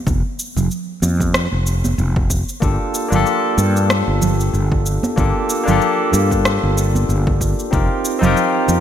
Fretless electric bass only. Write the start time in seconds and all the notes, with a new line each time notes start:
0.07 F1
0.57 F1
1.02 F2
1.52 F1
1.98 F1
2.62 G1
3.12 G1
3.58 G2
4.08 G1
4.53 G1
5.18 G1
5.68 G1
6.13 G2
6.63 G1
7.09 G1
7.73 F1
8.23 F1
8.68 F2